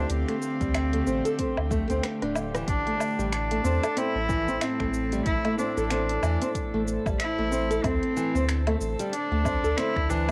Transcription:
Already playing: D3 A3 D4 G4 C5 F5 G5
0.10 D2 C4, closed hi-hat, shaker
0.28 A3, finger snap, closed hi-hat
0.42 shaker
0.61 D2 G3, kick, closed hi-hat, shaker
0.74 finger snap, closed hi-hat, low woodblock, shaker
0.93 A3, closed hi-hat
1.07 A1 C4, shaker
1.25 A4, closed hi-hat, shaker
1.39 C4, kick, closed hi-hat, shaker
1.57 D2, low woodblock
1.71 A3, kick, shaker
1.90 D2 C4, closed hi-hat, shaker
2.04 finger snap, cross-stick, closed hi-hat, shaker
2.22 D1 D4, cross-stick, closed hi-hat
2.35 low woodblock, shaker
2.55 E3, cross-stick, closed hi-hat, shaker
2.67 A1 A2 D4 A4 A5, kick, closed hi-hat, shaker
2.75 A3
2.87 A3, closed hi-hat
3.00 low woodblock, shaker
3.19 A1 G3, shaker
3.32 D4, finger snap, closed hi-hat, shaker
3.47 E4
3.51 A3, closed hi-hat
3.64 E2 C4, shaker
3.83 A4 C5, closed hi-hat, low woodblock, shaker
3.97 C4 E4, closed hi-hat, shaker
4.15 A1
4.29 E3, kick, shaker
4.47 A1 C4, shaker
4.61 C4, finger snap, closed hi-hat, low woodblock, shaker
4.80 A1 A3, finger snap, kick
4.94 shaker
5.12 G3, closed hi-hat, shaker
5.26 A1 E4, kick, closed hi-hat, shaker
5.45 A3, closed hi-hat, low woodblock
5.58 C4 D4, shaker
5.77 A1 A4, shaker
5.90 C4, finger snap, closed hi-hat, shaker
6.09 closed hi-hat
6.23 E2 E3, low woodblock, shaker
6.42 C4, closed hi-hat, shaker
6.55 kick, closed hi-hat, shaker
6.74 A1 A3
6.88 shaker
7.06 A1 G3, kick, low woodblock, shaker
7.19 E4, finger snap, closed hi-hat, shaker
7.38 A1 A3
7.52 C4, shaker
7.70 A4, closed hi-hat, shaker
7.83 D2 D3 C4, kick, closed hi-hat, low woodblock, shaker
8.03 closed hi-hat
8.14 E3 D5, shaker
8.35 D2 C4, shaker
8.49 finger snap, closed hi-hat, shaker
8.67 A3, closed hi-hat, low woodblock
8.81 A1, shaker
8.99 G3, closed hi-hat, shaker
9.13 D4, closed hi-hat, shaker
9.31 D2 A3
9.45 C4, kick, low woodblock, shaker
9.63 D2 A4, shaker
9.77 C4 E4, finger snap, closed hi-hat, shaker
9.96 D2, finger snap, kick
10.09 E3 D4, shaker

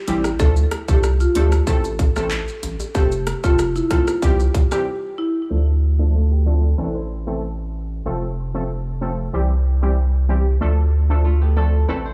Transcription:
0.08 A1 E3 G3 C4 E4 G4, closed hi-hat, low bongo, shaker
0.24 cross-stick, high bongo, shaker
0.39 D2 F3 A3 D4 A4, kick, high bongo, shaker
0.56 shaker
0.71 cross-stick, closed hi-hat, shaker
0.88 C2 F3 A3 D4 G4 A4, kick, high bongo, shaker
1.03 cross-stick, shaker
1.20 F4, shaker
1.35 D2 F3 A3 D4 G4 A4, closed hi-hat, high bongo, shaker
1.52 cross-stick, shaker
1.67 A1 E3 A3 C4 A4, kick, high bongo, shaker
1.84 high bongo, shaker
1.99 kick, closed hi-hat, high bongo, shaker
2.16 A1 E3 A3 C4 A4, cross-stick, shaker
2.31 clap, shaker
2.48 shaker
2.63 A1, closed hi-hat, low bongo, shaker
2.80 high bongo, shaker
2.95 F1 F3 A3 C4 G4 A4, kick, high bongo, shaker
3.12 shaker
3.27 cross-stick, closed hi-hat, shaker
3.44 F1 F3 A3 C4 F4 A4, kick, high bongo, shaker
3.59 cross-stick, shaker
3.76 E4, shaker
3.90 F3 A3 C4 F4 A4, kick, cross-stick, closed hi-hat, high bongo, shaker
4.07 cross-stick, shaker
4.22 C2 E3 G3 C4 G4, kick, high bongo, shaker
4.40 high bongo, shaker
4.54 kick, closed hi-hat, high bongo, shaker
4.71 E3 G3 C4 G4, cross-stick, shaker
5.18 E4
5.50 D2 F3 A3 D4 A4
5.99 F3 A3 D4 A4
6.14 A3 F4
6.31 B3 G4
6.46 F3 A3 C4 D4 A4
6.78 A1 E3 A3 C4 D4 A4 B4
6.95 E4 C5
7.26 E3 A3 C4 A4
8.05 F1 F3 A3 C4 A4
8.54 F3 A3 C4 A4
9.01 F3 A3 C4 A4
9.33 C2 E3 G3 C4 G4
9.82 E3 G3 C4 G4
10.29 E3 G3 C4 G4
10.60 D2 F3 A3 D4 A4
11.09 F3 A3 D4 A4
11.25 A3 F4
11.42 B3 G4
11.56 F3 A3 C4 D4 A4
11.88 A1 E3 A3 C4 D4 A4 B4
12.05 E4 C5

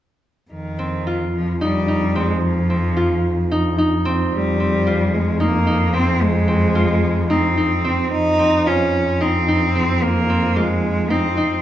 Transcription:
0.51 F2 D#3
0.79 C4
1.07 F4
1.34 F3
1.61 G3 D#4
1.88 D#4
2.15 G#3 C4
2.43 F3
2.70 C4
2.97 F4
3.51 D#4
3.78 D#4
4.05 C4
4.32 F2 G3
4.60 C4
4.87 F4
5.14 G#3
5.40 A#3 D#4
5.67 D#4
5.94 C4
6.22 G#3
6.48 C4
6.75 F4
7.30 C4 D#4
7.57 D#4
7.84 C4
8.11 F2 D#4
8.39 C4
8.66 C#4 F4
9.21 C4 D#4
9.48 D#4
9.75 C4
10.03 A#3
10.30 C4
10.56 G#3 F4
11.10 C4 D#4
11.37 D#4

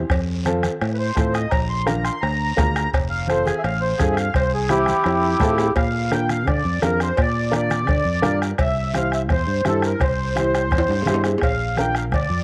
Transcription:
0.10 F2, bombo low, bombo rim, cowbell, long guiro
0.45 C4 F4 A4, bombo rim, cowbell, high conga, short guiro
0.63 bombo rim, high conga, short guiro
0.81 A2, bombo rim, cowbell, long guiro
0.94 B4
0.99 C5
1.15 A2 C4 F4 A4, bombo low, bombo rim, cowbell, high conga, short guiro
1.33 D#5, bombo rim, short guiro
1.50 A#1 A#5, bombo low, bombo rim, cowbell, long guiro
1.69 C6
1.86 D4 F4 A#4 A#5, bombo rim, cowbell, high conga, short guiro
2.05 C6, bombo rim, short guiro
2.21 D2 A#5, bombo rim, cowbell, long guiro
2.56 D2 D4 F4 A#4, bombo low, bombo rim, cowbell, high conga, low conga, low timbale, short guiro
2.76 bombo rim, short guiro
2.93 F1, bombo low, bombo rim, cowbell, long guiro
3.10 F5
3.28 C4 F4 A4 C5, bombo rim, cowbell, high conga, short guiro
3.45 G#4, bombo rim, high conga, short guiro
3.58 E5
3.63 A1 F5, bombo rim, cowbell, long guiro
3.81 C5
3.98 G2 C4 F4 G#4 A4, bombo low, bombo rim, cowbell, high conga, short guiro
4.12 E5
4.17 F5, bombo rim, short guiro
4.34 C2 C5, bombo low, bombo rim, cowbell, long guiro
4.54 G#4
4.69 C4 E4 G4, bombo rim, cowbell, high conga, short guiro
4.86 bombo rim, high conga, short guiro
5.04 F2, bombo rim, cowbell, high timbale, long guiro
5.40 A2 C4 F4 A4, bombo low, bombo rim, cowbell, high conga, low conga, low timbale, short guiro
5.58 bombo rim, low timbale, short guiro
5.76 A#2 F5, bombo low, bombo rim, cowbell, long guiro
6.11 D4 F4 A#4 G5, bombo rim, cowbell, high conga, short guiro
6.29 F5, bombo rim, high conga, short guiro
6.47 D3 D5, bombo low, bombo rim, cowbell, low conga, long guiro
6.65 F2
6.82 F2 D4 F4 A#4, bombo rim, cowbell, high conga, low timbale, short guiro
7.00 C5, bombo rim, short guiro
7.17 A#2 D5, bombo low, bombo rim, cowbell, long guiro
7.51 D4 F4 A#4, bombo rim, cowbell, high conga, short guiro
7.56 D5
7.70 bombo rim, high conga, short guiro
7.87 D3, bombo low, bombo rim, cowbell, low conga, long guiro
8.05 F2
8.21 G2 D4 F4 A#4, bombo rim, cowbell, high conga, low conga, short guiro
8.42 bombo rim, short guiro
8.58 C2 E5, bombo low, bombo rim, cowbell, long guiro
8.94 E4 G4 C5 F5, bombo rim, cowbell, high conga, short guiro
9.12 E5, bombo rim, short guiro
9.29 E2 C5, bombo low, bombo rim, cowbell, low conga, long guiro
9.47 G2
9.65 G2 E4 G4 A4 C5, bombo rim, cowbell, high conga, short guiro
9.82 A#4, bombo rim, short guiro
10.00 C2 C5, bombo low, bombo rim, cowbell, low conga, long guiro
10.36 E4 G4 C5, bombo rim, cowbell, high conga, short guiro
10.55 bombo rim, high timbale, short guiro
10.71 E2, bombo low, bombo rim, cowbell, low conga, long guiro
10.78 high timbale
10.89 G2, high timbale
11.02 high conga, low conga, low timbale
11.07 G2 E4 G4 C5, bombo rim, cowbell, short guiro
11.14 low timbale
11.24 bombo rim, low timbale, short guiro
11.38 bombo low, bombo rim, low timbale
11.43 A#1 F5, cowbell, long guiro
11.77 D4 F4 A#4 G5, bombo rim, cowbell, high conga, short guiro
11.95 F5, bombo rim, short guiro
12.12 D2 D5, bombo low, bombo rim, cowbell, low conga, long guiro
12.30 F2

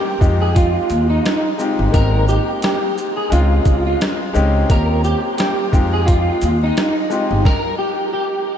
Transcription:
Already playing: A#3 C4 C#4 F4 G4
0.20 F2 G#3 C4 D#4 F4 G4, kick, shaker
0.41 G#4
0.55 F4, kick, closed hi-hat
0.90 D#2, closed hi-hat, shaker
1.09 D#4
1.26 cross-stick, snare, closed hi-hat
1.58 G#3 C4 D#4 F4 G4, shaker
1.79 G1
1.91 G#1 G#3 A#3 B3 D#4 G4 A#4, kick, closed hi-hat
1.99 C4
2.28 G4, shaker
2.62 G4, cross-stick, snare, closed hi-hat
2.98 shaker
3.17 G#4
3.30 C#2 G#3 C4 C#4 D#4 F4, closed hi-hat
3.65 C#2, kick, closed hi-hat, shaker
3.86 F4
4.01 cross-stick, snare, closed hi-hat
4.33 C#2 G#3 C4 C#4 D#4 G4, shaker
4.69 D#2 A#3 C4 C#4 F4 G4 A#4, kick, closed hi-hat
5.04 G4, shaker
5.37 G4, cross-stick, snare, closed hi-hat
5.72 F2 G#3 C4 D#4 F4 G4, kick, shaker
5.93 G#4
6.06 F4, kick, closed hi-hat
6.41 D#2, closed hi-hat, shaker
6.63 D#4
6.77 cross-stick, snare, closed hi-hat
7.10 G#3 C4 D#4 F4 G4, shaker
7.31 G1
7.45 A#4, kick, snare
7.78 G4
8.13 G4

